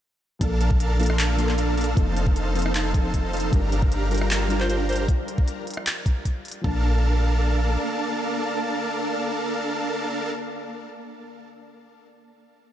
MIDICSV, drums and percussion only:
0, 0, Header, 1, 2, 480
1, 0, Start_track
1, 0, Key_signature, -2, "major"
1, 0, Tempo, 389610
1, 506, Time_signature, 4, 2, 24, 8
1, 15677, End_track
2, 0, Start_track
2, 0, Title_t, "Drums"
2, 505, Note_on_c, 9, 36, 120
2, 506, Note_on_c, 9, 42, 84
2, 629, Note_off_c, 9, 36, 0
2, 630, Note_off_c, 9, 42, 0
2, 747, Note_on_c, 9, 42, 70
2, 870, Note_off_c, 9, 42, 0
2, 871, Note_on_c, 9, 36, 110
2, 988, Note_on_c, 9, 42, 85
2, 994, Note_off_c, 9, 36, 0
2, 1111, Note_off_c, 9, 42, 0
2, 1228, Note_on_c, 9, 42, 52
2, 1268, Note_off_c, 9, 42, 0
2, 1268, Note_on_c, 9, 42, 68
2, 1307, Note_off_c, 9, 42, 0
2, 1307, Note_on_c, 9, 42, 86
2, 1353, Note_on_c, 9, 37, 81
2, 1430, Note_off_c, 9, 42, 0
2, 1466, Note_on_c, 9, 39, 121
2, 1466, Note_on_c, 9, 42, 82
2, 1476, Note_off_c, 9, 37, 0
2, 1590, Note_off_c, 9, 39, 0
2, 1590, Note_off_c, 9, 42, 0
2, 1708, Note_on_c, 9, 42, 71
2, 1831, Note_off_c, 9, 42, 0
2, 1833, Note_on_c, 9, 39, 39
2, 1948, Note_on_c, 9, 42, 85
2, 1957, Note_off_c, 9, 39, 0
2, 2071, Note_off_c, 9, 42, 0
2, 2187, Note_on_c, 9, 42, 52
2, 2230, Note_off_c, 9, 42, 0
2, 2230, Note_on_c, 9, 42, 69
2, 2268, Note_off_c, 9, 42, 0
2, 2268, Note_on_c, 9, 42, 83
2, 2391, Note_off_c, 9, 42, 0
2, 2426, Note_on_c, 9, 36, 125
2, 2428, Note_on_c, 9, 42, 80
2, 2549, Note_off_c, 9, 36, 0
2, 2552, Note_off_c, 9, 42, 0
2, 2668, Note_on_c, 9, 42, 69
2, 2791, Note_off_c, 9, 42, 0
2, 2792, Note_on_c, 9, 36, 115
2, 2908, Note_on_c, 9, 42, 79
2, 2915, Note_off_c, 9, 36, 0
2, 3031, Note_off_c, 9, 42, 0
2, 3148, Note_on_c, 9, 42, 52
2, 3190, Note_off_c, 9, 42, 0
2, 3190, Note_on_c, 9, 42, 68
2, 3228, Note_off_c, 9, 42, 0
2, 3228, Note_on_c, 9, 42, 83
2, 3274, Note_on_c, 9, 37, 78
2, 3351, Note_off_c, 9, 42, 0
2, 3388, Note_on_c, 9, 39, 121
2, 3388, Note_on_c, 9, 42, 82
2, 3397, Note_off_c, 9, 37, 0
2, 3511, Note_off_c, 9, 39, 0
2, 3511, Note_off_c, 9, 42, 0
2, 3626, Note_on_c, 9, 36, 112
2, 3628, Note_on_c, 9, 42, 68
2, 3749, Note_off_c, 9, 36, 0
2, 3751, Note_off_c, 9, 42, 0
2, 3866, Note_on_c, 9, 36, 65
2, 3867, Note_on_c, 9, 42, 80
2, 3989, Note_off_c, 9, 36, 0
2, 3991, Note_off_c, 9, 42, 0
2, 4108, Note_on_c, 9, 42, 49
2, 4150, Note_off_c, 9, 42, 0
2, 4150, Note_on_c, 9, 42, 67
2, 4188, Note_off_c, 9, 42, 0
2, 4188, Note_on_c, 9, 42, 82
2, 4311, Note_off_c, 9, 42, 0
2, 4346, Note_on_c, 9, 36, 127
2, 4347, Note_on_c, 9, 42, 78
2, 4469, Note_off_c, 9, 36, 0
2, 4470, Note_off_c, 9, 42, 0
2, 4587, Note_on_c, 9, 42, 65
2, 4710, Note_off_c, 9, 42, 0
2, 4711, Note_on_c, 9, 36, 119
2, 4826, Note_on_c, 9, 42, 77
2, 4834, Note_off_c, 9, 36, 0
2, 4950, Note_off_c, 9, 42, 0
2, 5065, Note_on_c, 9, 42, 50
2, 5108, Note_off_c, 9, 42, 0
2, 5108, Note_on_c, 9, 42, 65
2, 5146, Note_off_c, 9, 42, 0
2, 5146, Note_on_c, 9, 42, 80
2, 5192, Note_on_c, 9, 37, 78
2, 5269, Note_off_c, 9, 42, 0
2, 5306, Note_on_c, 9, 39, 127
2, 5306, Note_on_c, 9, 42, 77
2, 5315, Note_off_c, 9, 37, 0
2, 5429, Note_off_c, 9, 39, 0
2, 5429, Note_off_c, 9, 42, 0
2, 5546, Note_on_c, 9, 42, 69
2, 5670, Note_off_c, 9, 42, 0
2, 5671, Note_on_c, 9, 39, 39
2, 5786, Note_on_c, 9, 42, 80
2, 5795, Note_off_c, 9, 39, 0
2, 5909, Note_off_c, 9, 42, 0
2, 6026, Note_on_c, 9, 42, 49
2, 6068, Note_off_c, 9, 42, 0
2, 6068, Note_on_c, 9, 42, 65
2, 6107, Note_off_c, 9, 42, 0
2, 6107, Note_on_c, 9, 42, 80
2, 6230, Note_off_c, 9, 42, 0
2, 6264, Note_on_c, 9, 36, 123
2, 6267, Note_on_c, 9, 42, 77
2, 6387, Note_off_c, 9, 36, 0
2, 6390, Note_off_c, 9, 42, 0
2, 6507, Note_on_c, 9, 42, 65
2, 6630, Note_off_c, 9, 42, 0
2, 6630, Note_on_c, 9, 36, 118
2, 6747, Note_on_c, 9, 42, 76
2, 6753, Note_off_c, 9, 36, 0
2, 6870, Note_off_c, 9, 42, 0
2, 6987, Note_on_c, 9, 42, 49
2, 7029, Note_off_c, 9, 42, 0
2, 7029, Note_on_c, 9, 42, 62
2, 7067, Note_off_c, 9, 42, 0
2, 7067, Note_on_c, 9, 42, 76
2, 7112, Note_on_c, 9, 37, 78
2, 7190, Note_off_c, 9, 42, 0
2, 7228, Note_on_c, 9, 39, 123
2, 7228, Note_on_c, 9, 42, 77
2, 7236, Note_off_c, 9, 37, 0
2, 7351, Note_off_c, 9, 39, 0
2, 7351, Note_off_c, 9, 42, 0
2, 7464, Note_on_c, 9, 36, 116
2, 7467, Note_on_c, 9, 42, 65
2, 7588, Note_off_c, 9, 36, 0
2, 7590, Note_off_c, 9, 42, 0
2, 7705, Note_on_c, 9, 36, 64
2, 7707, Note_on_c, 9, 42, 77
2, 7828, Note_off_c, 9, 36, 0
2, 7830, Note_off_c, 9, 42, 0
2, 7947, Note_on_c, 9, 42, 47
2, 7988, Note_off_c, 9, 42, 0
2, 7988, Note_on_c, 9, 42, 62
2, 8027, Note_off_c, 9, 42, 0
2, 8027, Note_on_c, 9, 42, 78
2, 8150, Note_off_c, 9, 42, 0
2, 8185, Note_on_c, 9, 36, 118
2, 8308, Note_off_c, 9, 36, 0
2, 15677, End_track
0, 0, End_of_file